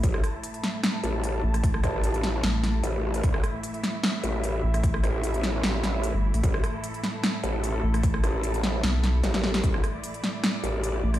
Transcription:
<<
  \new Staff \with { instrumentName = "String section" } { \time 4/4 \key c \major \tempo 4 = 150 << { a''1~ | a''1 | e''1~ | e''1 |
a'1~ | a'1 | d''1 | } \\ { <a, e a e'>1~ | <a, e a e'>1~ | <a, e a e'>1~ | <a, e a e'>1~ |
<a, e a e'>1~ | <a, e a e'>1~ | <a, e a e'>1 | } >> }
  \new Staff \with { instrumentName = "Wobble bass" } { \clef bass \time 4/4 \key c \major a,,8 r2 a,,4 r8 | r8 a,,4. r4 a,,4 | a,,8 r2 a,,4 r8 | r8 a,,4. a,,8 a,,8 r4 |
a,,8 r2 a,,4 r8 | r8 a,,4. r4 a,,4 | a,,8 r2 a,,4 r8 | }
  \new Staff \with { instrumentName = "Wobble bass" } { \clef bass \time 4/4 \key c \major r2. r8 a,,8~ | a,,8 r4. a,,4 r4 | r2. r8 a,,8~ | a,,8 r2 r8. g,,8 a,,16 |
r2. r8 a,,8~ | a,,8 r4. b,,4 r4 | r2. r8 a,,8 | }
  \new DrumStaff \with { instrumentName = "Drums" } \drummode { \time 4/4 <hh bd>16 ss16 <hh ss>8 hh16 hh16 <hh sn>8 <hh sn>8 hh8 hh8. <hh ss>16 | <hh bd>16 ss16 <hh bd ss>8 hh16 hh16 <hh sn>8 <hh sn>8 <hh sn>8 hh8. hh16 | <hh bd>16 ss16 <hh ss>8 hh16 hh16 <hh sn>8 <hh sn>8 hh8 hh8. <hh ss>16 | <hh bd>16 ss16 <hh ss>8 hh16 hh16 <hh sn>8 <hh sn>8 <hh sn>8 hh8. hh16 |
<hh bd>16 ss16 <hh ss>8 hh16 hh16 <hh sn>8 <hh sn>8 hh8 hh8. <hh ss>16 | <hh bd>16 ss16 <hh ss>8 hh16 hh16 <hh sn>8 <hh sn>8 <hh sn>8 <hh sn>16 <hh sn>16 sn16 <hh sn>16 | <hh bd>16 ss16 <hh ss>8 hh16 hh16 <hh sn>8 <hh sn>8 hh8 hh8. <hh ss>16 | }
>>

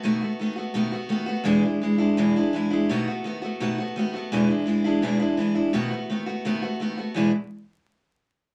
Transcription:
\new Staff \with { instrumentName = "Steel-string acoustic guitar" } { \time 4/4 \key e \mixolydian \tempo 4 = 168 <b, dis a b fis'>8 <a b fis'>8 <dis a b fis'>8 <a b fis'>8 <b, dis a b fis'>8 <a b fis'>8 <dis a b fis'>8 <a b fis'>8 | <e, b, e gis d' e'>8 <e gis d' e'>8 <e gis d' e'>8 <e gis d' e'>8 <e, b, e gis d' e'>8 <e gis d' e'>8 <e gis d' e'>8 <e gis d' e'>8 | <b, dis a b fis'>8 <a b fis'>8 <dis a b fis'>8 <a b fis'>8 <b, dis a b fis'>8 <a b fis'>8 <dis a b fis'>8 <a b fis'>8 | <e, b, e gis d' e'>8 <e gis d' e'>8 <e gis d' e'>8 <e gis d' e'>8 <e, b, e gis d' e'>8 <e gis d' e'>8 <e gis d' e'>8 <e gis d' e'>8 |
<b, dis a b fis'>8 <a b fis'>8 <dis a b fis'>8 <a b fis'>8 <b, dis a b fis'>8 <a b fis'>8 <dis a b fis'>8 <a b fis'>8 | <e, b, e gis d' e'>8 r2. r8 | }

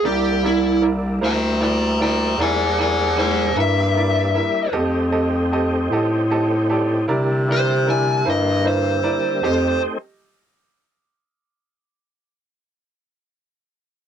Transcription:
<<
  \new Staff \with { instrumentName = "Lead electric guitar" } { \time 12/8 \key c \dorian \tempo 4. = 51 g'8 e'8 r8 <g'' bes''>8 <g'' bes''>8 <g'' bes''>8 <c'' aes''>8 <c'' aes''>8 <c'' aes''>8 e''4. | r2. r8 c''8 aes''8 ees''8 c''4 | c''8 r1 r4. | }
  \new Staff \with { instrumentName = "Grand piano" } { \time 12/8 \key c \dorian <e' bes' d''>8 <e' bes' d''>8 <e' bes' d''>8 <e' bes' c''>8 <e' bes' d''>8 <e' bes' d''>8 <e' bes' d''>8 <e' bes' d''>8 <e' bes' c''>8 <e' bes' e''>8 <e' bes' d''>8 <e' bes' e''>8 | <g' a' ees''>8 <g' a' ees''>8 <g' a' ees''>8 <g' a' ees''>8 <g' a' ees''>8 <g' a' d''>8 <e' bes' d''>8 <e' bes' d''>8 <e' bes' d''>8 <e' bes' c''>8 <e' bes' c''>8 <e' bes' d''>8 | <g' a' ees''>8 r1 r4. | }
  \new Staff \with { instrumentName = "Tonewheel organ" } { \time 12/8 \key c \dorian <g bes d' e'>1. | <a c' ees' g'>2. <d g bes e'>2. | <a c' ees' g'>8 r1 r4. | }
  \new Staff \with { instrumentName = "Bass clarinet" } { \clef bass \time 12/8 \key c \dorian c,4. d,4. e,4. g,4 r8 | f,4. a,4. c4. g,4 r8 | f,8 r1 r4. | }
>>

